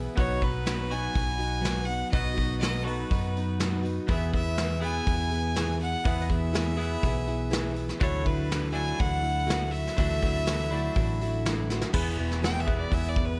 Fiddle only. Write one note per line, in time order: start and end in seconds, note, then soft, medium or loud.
0.18 0.44 C#5 loud
0.43 0.92 B4 medium
0.91 1.87 G#5 loud
1.85 2.11 F#5 loud
2.11 2.58 D#5 medium
2.60 2.83 D#5 medium
2.82 2.86 A4 medium
2.82 3.84 B4 medium
4.09 4.32 E5 medium
4.35 4.80 E5 medium
4.83 5.77 G#5 loud
5.82 6.23 F#5 loud
6.21 6.31 D#5 medium
6.30 7.77 E5 medium
8.00 8.28 C#5 medium
8.26 8.71 B4 medium
8.72 9.01 G#5 medium
9.00 9.72 F#5 loud
9.71 11.44 E5 loud
12.44 12.62 G5 medium
12.60 12.76 E5 medium
12.78 12.95 D5 medium
12.93 13.11 E5 medium
13.09 13.27 D5 medium
13.25 13.40 B4 medium